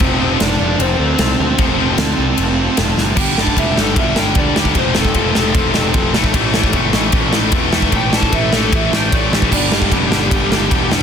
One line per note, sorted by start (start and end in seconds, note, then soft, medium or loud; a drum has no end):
0.00 0.16 F1 medium
0.00 0.16 F2 medium
0.00 0.17 C3 loud
0.00 0.63 F3 loud
0.00 0.17 F3 loud
0.00 0.38 C4 medium
0.00 0.62 C4 medium
0.00 0.61 F4 medium
0.00 0.40 C5 loud
0.00 kick loud
0.04 0.60 A4 loud
0.19 0.35 F1 medium
0.19 0.36 F2 loud
0.19 0.37 C3 loud
0.19 0.37 F3 loud
0.40 0.55 F1 medium
0.40 0.78 D4 medium
0.40 0.79 D5 medium
0.40 snare medium
0.40 ride medium
0.60 0.75 F1 medium
0.60 1.58 F3 medium
0.60 1.59 C4 medium
0.60 1.59 F4 medium
0.60 1.58 A4 medium
0.79 0.94 F1 medium
0.79 2.74 C4 medium
0.79 2.74 C5 medium
0.79 ride medium
0.99 1.14 D2 medium
1.19 1.34 C2 medium
1.19 snare loud
1.19 ride medium
1.40 1.55 D2 medium
1.58 1.74 F1 medium
1.58 1.75 F2 loud
1.58 1.75 C3 loud
1.58 2.17 F3 medium
1.58 1.76 F3 medium
1.58 2.18 C4 medium
1.58 2.18 F4 medium
1.58 2.17 A4 loud
1.58 kick loud
1.58 ride medium
1.78 1.93 F1 medium
1.78 1.94 F2 loud
1.78 1.95 C3 loud
1.78 1.95 F3 loud
1.97 2.13 D2 medium
1.97 snare loud
1.97 ride medium
2.18 2.33 C2 medium
2.18 3.17 F3 medium
2.18 3.17 C4 medium
2.18 3.17 F4 medium
2.18 3.16 A4 medium
2.38 2.68 F1 medium
2.38 ride medium
2.77 2.93 F1 medium
2.77 snare loud
2.77 ride medium
2.97 3.12 F#1 medium
2.97 snare medium
3.16 3.35 G1 medium
3.16 3.35 G2 medium
3.16 3.35 D3 loud
3.16 3.75 G3 medium
3.16 3.36 G3 loud
3.16 3.76 B3 medium
3.16 3.76 D4 loud
3.16 3.39 G5 medium
3.16 kick loud
3.16 crash loud
3.21 3.76 G4 loud
3.36 3.55 G1 medium
3.36 3.56 G2 medium
3.36 3.56 D3 loud
3.36 3.56 G3 medium
3.36 3.58 A5 medium
3.36 snare medium
3.47 kick medium
3.57 3.75 F1 medium
3.57 3.75 G2 medium
3.57 3.75 D3 medium
3.57 3.75 G3 loud
3.57 3.77 E5 medium
3.57 kick medium
3.57 ride medium
3.76 3.95 G1 medium
3.76 3.93 G2 medium
3.76 3.95 D3 loud
3.76 3.95 G3 loud
3.76 4.76 B3 medium
3.76 4.75 D4 medium
3.76 4.75 G4 medium
3.76 3.97 A4 medium
3.76 snare loud
3.80 4.75 G3 medium
3.95 4.14 G1 medium
3.95 4.13 G2 medium
3.95 4.13 D3 loud
3.95 4.15 G3 medium
3.95 4.17 E5 medium
3.95 kick loud
3.95 ride medium
4.14 4.35 G1 medium
4.14 4.34 G2 medium
4.14 4.34 D3 medium
4.14 4.35 G3 loud
4.14 4.36 G5 medium
4.14 snare loud
4.35 4.72 D2 medium
4.35 4.53 G2 medium
4.35 4.53 D3 medium
4.35 4.54 G3 medium
4.35 4.56 D5 medium
4.35 kick loud
4.35 ride medium
4.54 4.74 G2 medium
4.54 4.74 D3 medium
4.54 4.74 G3 medium
4.54 4.76 G4 medium
4.54 snare loud
4.65 kick medium
4.75 4.93 F1 loud
4.75 4.93 F2 loud
4.75 4.94 C3 medium
4.75 5.34 F3 medium
4.75 4.95 F3 loud
4.75 5.37 A3 loud
4.75 5.36 C4 medium
4.75 4.96 C5 medium
4.75 kick loud
4.75 ride medium
4.79 5.34 F4 loud
4.95 5.14 F1 medium
4.95 5.13 F2 medium
4.95 5.14 C3 loud
4.95 5.15 F3 loud
4.95 6.12 A4 loud
4.95 snare loud
5.05 kick medium
5.14 5.33 F1 medium
5.14 5.33 F2 medium
5.14 5.33 C3 medium
5.14 5.33 F3 medium
5.14 kick medium
5.14 ride medium
5.34 5.53 F1 medium
5.34 5.52 F2 medium
5.34 5.53 C3 medium
5.34 5.53 F3 medium
5.34 6.15 A3 medium
5.34 6.16 C4 medium
5.34 6.14 F4 medium
5.34 snare medium
5.39 6.14 F3 medium
5.53 5.73 F1 medium
5.53 5.73 F2 medium
5.53 5.73 C3 medium
5.53 5.74 F3 medium
5.53 kick loud
5.53 ride medium
5.74 5.94 F1 medium
5.74 5.92 F2 medium
5.74 5.92 C3 medium
5.74 5.93 F3 loud
5.74 snare medium
5.93 6.13 F1 medium
5.93 6.13 F2 medium
5.93 6.13 C3 medium
5.93 6.13 F3 medium
5.93 kick loud
5.93 ride medium
6.14 6.33 A1 medium
6.14 6.73 A2 medium
6.14 6.34 A2 loud
6.14 6.34 E3 loud
6.14 6.74 E3 loud
6.14 6.34 A3 loud
6.14 6.75 A3 loud
6.14 6.76 C4 loud
6.14 6.77 E4 loud
6.14 snare loud
6.24 kick medium
6.34 6.52 A1 medium
6.34 6.52 A2 medium
6.34 6.53 E3 loud
6.34 6.54 A3 loud
6.34 kick loud
6.34 ride medium
6.53 6.73 A1 medium
6.53 6.72 A2 loud
6.53 6.73 E3 loud
6.53 6.73 A3 medium
6.53 snare loud
6.64 kick medium
6.72 6.92 G1 medium
6.72 6.92 A2 medium
6.72 7.71 A2 medium
6.72 6.93 E3 loud
6.72 7.72 E3 medium
6.72 6.93 A3 loud
6.72 7.72 A3 medium
6.72 7.73 C4 medium
6.72 kick medium
6.72 ride medium
6.77 7.74 E4 medium
6.92 7.12 A1 medium
6.92 7.11 A2 medium
6.92 7.11 E3 medium
6.92 7.12 A3 medium
6.92 snare loud
7.12 7.31 A1 loud
7.12 7.31 A2 medium
7.12 7.32 E3 loud
7.12 7.32 A3 loud
7.12 kick loud
7.12 ride medium
7.32 7.52 A1 medium
7.32 7.51 A2 medium
7.32 7.52 E3 loud
7.32 7.52 A3 medium
7.32 snare loud
7.52 7.89 E2 loud
7.52 7.71 A2 medium
7.52 7.71 E3 medium
7.52 7.72 A3 loud
7.52 kick loud
7.52 ride medium
7.72 7.91 A2 medium
7.72 8.31 A2 medium
7.72 7.91 E3 medium
7.72 8.32 E3 medium
7.72 7.92 A3 medium
7.72 8.32 A3 medium
7.72 8.32 C4 loud
7.72 8.33 E4 loud
7.72 snare loud
7.82 kick medium
7.92 8.11 A1 loud
7.92 8.10 A2 medium
7.92 8.11 E3 medium
7.92 8.11 A3 loud
7.92 kick medium
7.92 ride medium
7.96 8.14 G5 medium
8.11 8.31 A1 medium
8.11 8.31 A2 loud
8.11 8.32 E3 loud
8.11 8.32 A3 loud
8.11 8.33 A5 medium
8.11 snare loud
8.22 kick medium
8.32 8.51 A1 medium
8.32 9.31 A2 medium
8.32 8.52 A2 medium
8.32 9.31 E3 medium
8.32 8.53 E3 medium
8.32 8.53 A3 loud
8.32 9.31 A3 medium
8.32 9.32 C4 medium
8.32 9.32 E4 medium
8.32 8.53 E5 medium
8.32 kick loud
8.32 ride medium
8.52 8.70 A1 medium
8.52 8.70 A2 medium
8.52 8.71 E3 medium
8.52 8.72 A3 loud
8.52 8.73 A4 medium
8.52 snare loud
8.71 8.91 A1 medium
8.71 8.91 A2 medium
8.71 8.92 E3 loud
8.71 8.92 A3 loud
8.71 8.95 E5 medium
8.71 kick loud
8.71 ride medium
8.92 9.10 A1 medium
8.92 9.11 A2 medium
8.92 9.11 E3 medium
8.92 9.12 A3 loud
8.92 9.13 G5 medium
8.92 snare loud
9.12 9.30 A1 medium
9.12 9.31 A2 medium
9.12 9.31 E3 medium
9.12 9.32 A3 medium
9.12 9.33 D5 medium
9.12 kick loud
9.12 ride medium
9.31 9.49 A1 medium
9.31 9.51 A2 medium
9.31 9.51 E3 medium
9.31 9.51 A3 medium
9.31 9.52 G4 loud
9.31 snare loud
9.42 kick loud
9.51 9.70 G1 loud
9.51 10.10 G2 medium
9.51 9.71 G2 medium
9.51 10.11 D3 loud
9.51 9.72 D3 loud
9.51 10.11 G3 loud
9.51 9.72 G3 loud
9.51 10.11 B3 medium
9.51 10.11 D4 medium
9.51 9.72 D5 loud
9.51 kick loud
9.51 crash loud
9.71 9.89 G1 medium
9.71 9.90 G2 loud
9.71 9.90 D3 medium
9.71 9.91 G3 loud
9.71 10.88 G4 loud
9.71 snare loud
9.82 kick medium
9.91 10.10 F1 medium
9.91 10.09 G2 medium
9.91 10.09 D3 medium
9.91 10.10 G3 loud
9.91 kick loud
9.91 ride medium
10.10 10.29 G1 medium
10.10 10.29 G2 medium
10.10 10.30 D3 medium
10.10 11.03 D3 medium
10.10 10.30 G3 medium
10.10 11.03 G3 medium
10.10 11.03 B3 medium
10.10 11.03 D4 medium
10.10 snare loud
10.15 11.03 G2 medium
10.31 10.49 G1 medium
10.31 10.49 G2 medium
10.31 10.49 D3 loud
10.31 10.50 G3 loud
10.31 kick loud
10.31 ride medium
10.50 10.68 G1 medium
10.50 10.69 G2 medium
10.50 10.69 D3 medium
10.50 10.70 G3 loud
10.50 snare loud
10.70 11.03 E1 medium
10.70 10.89 G2 medium
10.70 10.89 D3 medium
10.70 10.90 G3 loud
10.70 kick loud
10.70 ride medium
10.90 11.03 G2 medium
10.90 11.03 D3 medium
10.90 11.03 G3 loud
10.90 snare loud